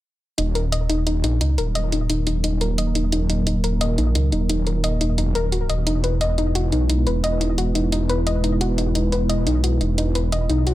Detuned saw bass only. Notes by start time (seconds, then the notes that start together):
0.38 D#1
1.24 A#1
1.41 C#2
1.58 D#1
2.10 D#1
2.27 D#1
3.12 D#1
3.98 A#1
4.15 C#2
4.32 D#1
4.84 D#1
5.01 D#1
5.18 E1
5.35 D#1
5.69 D#1
5.87 E1
6.72 B1
6.89 B1
7.07 E1
7.58 E1
7.75 E1
8.61 E1
9.47 B1
9.64 B1
9.81 E1
10.32 E1
10.49 B1